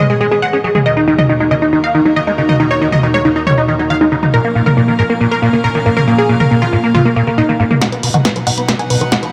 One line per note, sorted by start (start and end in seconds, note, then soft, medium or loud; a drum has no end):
0.00 0.82 G#2 medium
0.00 4.30 D#3 medium
0.00 0.82 B3 medium
0.00 0.82 G#4 medium
0.00 0.82 D#5 medium
0.10 0.14 G#3 medium
0.10 0.17 G#4 medium
0.21 0.27 G#3 loud
0.21 0.28 G#4 medium
0.31 0.34 B3 medium
0.31 0.39 G#4 medium
0.42 0.47 G#3 medium
0.42 0.50 F#5 medium
0.53 0.57 C#4 medium
0.53 0.61 G#4 medium
0.64 0.68 F#3 medium
0.64 0.72 G#4 medium
0.75 0.79 G#3 medium
0.75 0.82 G#4 medium
0.75 0.83 G#4 medium
0.75 mid tom medium
0.86 4.30 D#2 medium
0.86 0.92 D#3 medium
0.86 4.30 A#3 medium
0.86 4.30 F#4 medium
0.86 4.30 A#4 medium
0.86 0.93 D#5 loud
0.97 1.01 D#4 medium
0.97 1.04 D#4 medium
1.08 1.14 D#3 medium
1.08 1.15 D#4 medium
1.18 1.21 F#3 medium
1.18 1.26 D#5 medium
1.18 mid tom medium
1.29 1.34 D#3 medium
1.29 1.37 D#4 medium
1.40 1.44 G#3 medium
1.40 1.48 D#4 medium
1.51 1.55 C#3 loud
1.51 1.59 D#5 medium
1.62 1.69 D#4 medium
1.62 1.66 D#4 medium
1.62 1.69 D#4 medium
1.73 1.79 D#3 medium
1.73 1.80 D#4 medium
1.84 1.88 D#4 medium
1.84 1.91 F5 medium
1.95 2.01 D#3 loud
1.95 2.02 D#4 medium
2.05 2.08 F#3 medium
2.05 2.13 D#4 medium
2.16 2.20 D#3 medium
2.16 2.24 D#5 medium
2.27 2.31 G#3 medium
2.27 2.35 D#4 medium
2.38 2.42 C#3 loud
2.38 2.46 D#4 medium
2.49 2.53 D#4 medium
2.49 2.56 D#5 medium
2.49 mid tom medium
2.60 2.66 D#3 medium
2.60 2.67 D#4 medium
2.71 2.75 D#4 medium
2.71 2.78 C#5 medium
2.81 2.88 D#3 medium
2.81 2.89 D#4 medium
2.92 2.95 F#3 medium
2.92 3.00 D#5 medium
2.92 mid tom medium
3.03 3.07 D#3 medium
3.03 3.11 D#4 medium
3.14 3.18 G#3 medium
3.14 3.22 C#5 medium
3.25 3.29 C#3 loud
3.25 3.32 D#4 medium
3.25 3.33 D#4 medium
3.36 3.43 D#4 medium
3.36 3.40 D#4 medium
3.36 3.43 D#4 medium
3.47 3.53 D#3 medium
3.47 3.54 C#5 medium
3.47 mid tom medium
3.58 3.65 D#4 medium
3.58 3.62 D#4 medium
3.68 3.75 D#3 loud
3.68 3.76 D#4 medium
3.79 3.82 F#3 medium
3.79 3.87 D#4 medium
3.90 3.94 D#3 medium
3.90 3.98 F5 medium
4.01 4.05 G#3 medium
4.01 4.09 D#4 medium
4.12 4.16 C#3 loud
4.12 4.19 D#4 medium
4.23 4.30 D#4 medium
4.23 4.27 D#4 medium
4.23 4.30 D#4 medium
4.23 mid tom medium
4.34 7.78 A#2 medium
4.34 4.40 A#2 medium
4.34 7.78 F3 medium
4.34 7.78 C#4 medium
4.34 7.78 A#4 medium
4.34 4.41 A#4 loud
4.34 7.78 F5 medium
4.45 4.52 A#3 medium
4.45 4.49 A#3 medium
4.55 4.62 A#2 loud
4.55 4.63 A#3 medium
4.66 4.69 C#3 medium
4.66 4.74 A#4 medium
4.66 mid tom medium
4.77 4.81 A#2 medium
4.77 4.85 A#3 medium
4.88 4.92 D#3 medium
4.88 4.96 A#3 medium
4.99 5.03 G#2 loud
4.99 5.06 A#4 medium
5.10 5.17 A#3 medium
5.10 5.14 A#3 medium
5.10 5.17 A#3 medium
5.21 5.27 A#2 medium
5.21 5.28 A#3 medium
5.32 5.36 A#3 medium
5.32 5.39 A#4 medium
5.42 5.49 A#2 loud
5.42 5.50 A#3 medium
5.53 5.56 C#3 medium
5.53 5.61 A#3 medium
5.64 5.68 A#2 medium
5.64 5.72 A#4 medium
5.75 5.79 D#3 medium
5.75 5.82 A#3 medium
5.75 5.83 A#3 medium
5.86 5.90 G#2 loud
5.86 5.93 A#3 medium
5.97 6.01 A#3 medium
5.97 6.04 A#4 medium
5.97 mid tom medium
6.07 6.14 A#2 medium
6.07 6.15 A#3 medium
6.18 6.23 A#3 medium
6.18 6.26 G#4 medium
6.29 6.36 A#2 medium
6.29 6.37 A#3 medium
6.40 6.43 C#3 medium
6.40 6.48 A#4 medium
6.40 mid tom medium
6.51 6.55 A#2 medium
6.51 6.59 A#3 medium
6.62 6.66 D#3 medium
6.62 6.69 F4 medium
6.73 6.77 G#2 loud
6.73 6.80 A#3 medium
6.84 6.91 A#3 medium
6.84 6.88 A#3 medium
6.95 7.01 A#2 medium
6.95 7.02 F4 medium
6.95 mid tom medium
7.05 7.13 A#3 medium
7.05 7.10 A#3 medium
7.05 7.13 A#3 medium
7.16 7.23 A#2 loud
7.16 7.24 A#3 medium
7.27 7.30 C#3 medium
7.27 7.35 A#3 medium
7.38 7.42 A#2 medium
7.38 7.46 D#4 medium
7.49 7.53 D#3 medium
7.49 7.56 A#3 medium
7.60 7.64 G#2 loud
7.60 7.67 A#3 medium
7.71 7.78 A#3 medium
7.71 7.75 A#3 medium
7.71 7.78 A#3 medium
7.71 mid tom medium
7.81 7.88 B2 medium
7.81 9.32 B2 medium
7.81 9.32 F#3 medium
7.81 9.32 D#4 medium
7.81 9.32 B4 medium
7.81 7.89 D#5 medium
7.81 7.89 F#5 loud
7.81 9.32 F#5 medium
7.81 kick loud
7.81 snare soft
7.81 closed hi-hat medium
7.92 7.97 B3 medium
7.92 8.00 B4 medium
7.92 closed hi-hat soft
8.03 8.10 B2 medium
8.03 8.11 B4 medium
8.03 open hi-hat loud
8.14 8.17 D#3 medium
8.14 8.22 D#5 medium
8.14 8.22 F#5 medium
8.14 closed hi-hat soft
8.14 mid tom medium
8.25 8.29 B2 medium
8.25 8.32 B4 medium
8.25 kick loud
8.25 snare soft
8.25 closed hi-hat medium
8.36 8.40 F3 medium
8.36 8.43 B4 medium
8.36 closed hi-hat soft
8.47 8.51 A#2 loud
8.47 8.54 D#5 medium
8.47 8.54 F#5 loud
8.47 8.54 F#5 medium
8.47 open hi-hat loud
8.58 8.62 B3 medium
8.58 8.65 B4 medium
8.58 closed hi-hat soft
8.68 8.75 B2 medium
8.68 8.76 B4 medium
8.68 kick loud
8.68 snare soft
8.68 closed hi-hat medium
8.79 8.84 B3 medium
8.79 8.87 B4 medium
8.79 8.87 G#5 medium
8.79 8.87 G#5 loud
8.79 closed hi-hat soft
8.90 8.96 B2 loud
8.90 8.98 B4 medium
8.90 open hi-hat loud
9.01 9.04 D#3 medium
9.01 9.09 B4 medium
9.01 closed hi-hat soft
9.12 9.16 B2 medium
9.12 9.19 D#5 medium
9.12 9.19 F#5 medium
9.12 kick loud
9.12 snare medium
9.12 closed hi-hat medium
9.23 9.27 F3 medium
9.23 9.30 B4 medium
9.23 closed hi-hat soft